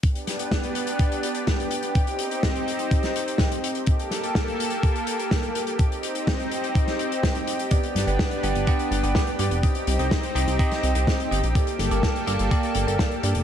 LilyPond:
<<
  \new Staff \with { instrumentName = "Tine electric piano" } { \time 4/4 \key c \dorian \tempo 4 = 125 r1 | r1 | r1 | r1 |
<b d' g' d''>8. <b d' g' d''>8. <b d' g' d''>8 <b d' g' d''>8. <b d' g' d''>8 r16 <b d' g' d''>16 r16 | <c' ees' g' ees''>8. <c' ees' g' ees''>8. <c' ees' g' ees''>8 <c' ees' g' ees''>8. <c' ees' g' ees''>8 r16 <c' ees' g' ees''>16 r16 | <bes g' a' d''>8. <bes g' a' d''>8. <bes g' a' d''>8 <bes g' a' d''>8. <bes g' a' d''>8 r16 <bes g' a' d''>16 r16 | }
  \new Staff \with { instrumentName = "Analog synth pad" } { \time 4/4 \key c \dorian << { g'1~ | g'1 | a'1 | r1 |
r1 | r1 | a'1 | } \\ { <b d'>1 | <c' ees'>1 | <bes g'>1 | <c' ees'>1 |
<b d'>1 | <c' ees'>1 | bes1 | } >> }
  \new Staff \with { instrumentName = "Analog synth bass" } { \clef bass \time 4/4 \key c \dorian r1 | r1 | r1 | r1 |
r8 g,,16 g,,16 r8 g,,16 g,,16 r8 g,,16 g,,16 r8 g,16 f,,16 | r8 c,16 c,16 r8 c,16 c,16 r8 c,16 c,16 r8 g,,16 bes,,16 | r8 g,,16 g,,16 r8 g,,16 g,,16 r8 g,,16 g,,16 r8 g,16 f,,16 | }
  \new DrumStaff \with { instrumentName = "Drums" } \drummode { \time 4/4 <hh bd>16 hh16 <hh sn>16 hh16 <hh bd sn>16 hh16 hh16 hh16 <hh bd>16 hh16 hh16 hh16 <hh bd sn>16 hh16 hh16 hh16 | <hh bd>16 hh16 hh16 hh16 <hh bd sn>16 hh16 hh16 hh16 <hh bd>16 <hh sn>16 hh16 hh16 <hh bd sn>16 hh16 hh16 hh16 | <hh bd>16 hh16 <hh sn>16 hh16 <hh bd sn>16 hh16 hh16 hh16 <hh bd>16 hh16 hh16 hh16 <hh bd sn>16 hh16 hh16 hh16 | <hh bd>16 hh16 hh16 hh16 <hh bd sn>16 hh16 hh16 hh16 <hh bd>16 <hh sn>16 hh16 hh16 <hh bd sn>16 hh16 hh16 hh16 |
<hh bd>16 hh16 <hh sn>16 hh16 <hh bd sn>16 hh16 hh16 hh16 <hh bd>16 hh16 hh16 hh16 <hh bd sn>16 hh16 hh16 hh16 | <hh bd>16 hh16 hh16 hh16 <hh bd sn>16 hh16 hh16 hh16 <hh bd>16 <hh sn>16 hh16 hh16 <hh bd sn>16 hh16 hh16 hh16 | <hh bd>16 hh16 <hh sn>16 hh16 <hh bd sn>16 hh16 hh16 hh16 <hh bd>16 hh16 hh16 hh16 <hh bd sn>16 hh16 hh16 hh16 | }
>>